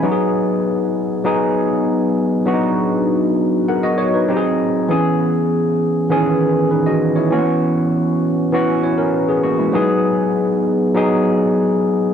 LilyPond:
\new Staff \with { instrumentName = "Tine electric piano" } { \time 4/4 \key b \major \tempo 4 = 99 << { r1 | r2 <ais' fis''>16 <fis' dis''>16 cis''16 <dis' b'>8 r8. | r2. <dis' b'>16 <fis' dis''>8 <e' cis''>16~ | <e' cis''>16 r2 r16 <e' cis''>16 <cis' ais'>8 <b gis'>16 <ais fis'>16 <gis e'>16~ |
<gis e'>16 r2. r8. | } \\ { <fis b dis' fis' gis'>2 <fis b dis' gis'>2 | <fis b d' dis' fis'>2 r4 <fis bis dis' g' gis'>4 | <e b cis' gis'>2 <dis e b cis' gis'>2 | <e ais b cis' fis'>2 <e b cis' fis'>2 |
<fis b dis' gis'>2 <fis b dis' gis'>2 | } >> }